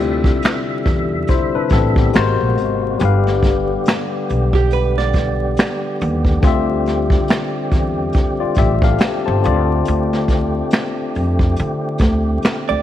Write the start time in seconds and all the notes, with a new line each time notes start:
Already playing: D2 C3 D3 G3 C4 E4 F4 G4 E5
0.00 closed hi-hat
0.24 kick
0.42 finger snap, snare, closed hi-hat
0.86 E2, kick, closed hi-hat
1.27 E4 C5, kick, closed hi-hat
1.55 D4 B4, muted upright bass stroke
1.69 A1 C4 A4, kick, snare, closed hi-hat
1.96 B3 G4, kick
2.13 G#1 G#3 A#3 F#4 A#4, finger snap, snare, closed hi-hat
2.18 C5
2.41 A#1
2.58 G#1, closed hi-hat
2.98 G1 D3 G3 B3 G4, closed hi-hat
3.02 B4 F5
3.27 snare
3.43 kick, snare, closed hi-hat
3.85 finger snap, snare, closed hi-hat
4.29 B1, closed hi-hat
4.53 G4, kick
4.71 B4, closed hi-hat
4.98 D5, snare
5.13 kick, snare, closed hi-hat
5.57 finger snap, snare, closed hi-hat
6.01 D#2, closed hi-hat
6.25 kick
6.40 D2 D3 C4 F4, kick, closed hi-hat
6.46 G4 E5
6.86 snare, closed hi-hat
7.10 kick
7.28 finger snap, snare, closed hi-hat
7.72 E2, kick, closed hi-hat
8.13 kick, closed hi-hat
8.40 F4 D5, muted upright bass stroke
8.55 A1 E5, kick, closed hi-hat
8.59 G4
8.82 A4 F5, kick
8.98 finger snap, snare, closed hi-hat
9.26 G1 C5 A5
9.40 D3 A3 C4, closed hi-hat
9.44 D2 F4 D5
9.85 D2, closed hi-hat
10.13 snare
10.28 kick, snare, closed hi-hat
10.71 finger snap, snare, closed hi-hat
11.15 F2, closed hi-hat
11.39 kick
11.56 D3, closed hi-hat
11.98 D2, kick, snare, closed hi-hat
12.42 finger snap, muted upright bass stroke, snare, closed hi-hat
12.69 D2 D5